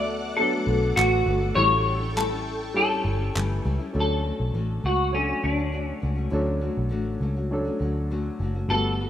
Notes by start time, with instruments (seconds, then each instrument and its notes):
Already playing: picked electric bass D2, upright piano F#3 B3 D4 A4, nylon-string guitar A3 B3 F#4, string machine A4 F#5 D6, clean electric guitar D5
0.37 upright piano F#3 B3 D4 A4, clean electric guitar A4
0.52 nylon-string guitar A3 B3 F#4
0.67 picked electric bass B1, nylon-string guitar D3 A3 B3 F#4
0.96 picked electric bass A1, nylon-string guitar D3 A3 B3 F#4, clean electric guitar F#4, clap
1.26 picked electric bass G1, nylon-string guitar D3 A3 B3 F#4
1.40 nylon-string guitar A3 B3 F#4
1.55 picked electric bass A1, nylon-string guitar A2 E3 G3 C#4 E4, upright piano G3 C#4 E4 A4, string machine A4 G5 C#6, clean electric guitar C#5
1.70 nylon-string guitar G3 C#4 E4
1.99 nylon-string guitar G3 C#4 E4
2.14 nylon-string guitar A2 E3 G3 C#4 E4, clean electric guitar A4, clap
2.29 nylon-string guitar G3 C#4 E4
2.74 upright piano G3 C#4 E4 A4, clean electric guitar A4
2.90 nylon-string guitar G3 C#4 E4
3.03 picked electric bass G1, nylon-string guitar E3 G3 C#4 E4
3.18 nylon-string guitar G3 C#4 E4
3.34 picked electric bass G1, nylon-string guitar A2 E3 G3 C#4 E4, clap
3.64 picked electric bass C#2, nylon-string guitar E3 G3 C#4 E4
3.79 nylon-string guitar G3 C#4 E4
3.93 picked electric bass D2, nylon-string guitar D3 A3 C#4 F#4, upright piano F#3 C#4 D4 A4
4.00 clean electric guitar A4
4.23 nylon-string guitar D3 A3 C#4 F#4
4.40 picked electric bass B1
4.54 picked electric bass A1, nylon-string guitar D3 A3 C#4 F#4
4.83 picked electric bass C#2, nylon-string guitar A3 C#4 F#4, clean electric guitar F#4
5.12 upright piano F#3 D4 A4 C#5, clean electric guitar C#4
5.27 nylon-string guitar A3 C#4 F#4
5.43 picked electric bass D2, nylon-string guitar D3 A3 C#4 F#4, clean electric guitar D4
5.58 nylon-string guitar A3 C#4 F#4
5.72 nylon-string guitar D3 A3 C#4 F#4
5.84 clean electric guitar C#4
6.00 picked electric bass C#2, nylon-string guitar D3 A3 C#4 F#4
6.16 nylon-string guitar A3 C#4 F#4
6.30 picked electric bass D2, nylon-string guitar D3 A3 C#4 F#4, upright piano F#3 C#4 D4 A4
6.60 nylon-string guitar D3 A3 C#4 F#4
6.77 picked electric bass B1
6.89 picked electric bass A1, nylon-string guitar D3 A3 C#4 F#4
7.21 picked electric bass C#2, nylon-string guitar D3 A3 C#4 F#4
7.36 nylon-string guitar A3 C#4 F#4
7.51 upright piano F#3 C#4 D4 A4
7.65 nylon-string guitar A3 C#4 F#4
7.79 picked electric bass D2, nylon-string guitar D3 A3 C#4 F#4
8.10 nylon-string guitar D3 A3 C#4 F#4
8.40 picked electric bass F#1, nylon-string guitar D3 A3 C#4 F#4
8.55 nylon-string guitar A3 C#4 F#4
8.69 picked electric bass G1, upright piano G3 B3 F#4 A4, nylon-string guitar G3 A3 D4 F#4 B4, clean electric guitar A4
8.98 nylon-string guitar A3 D4 F#4 B4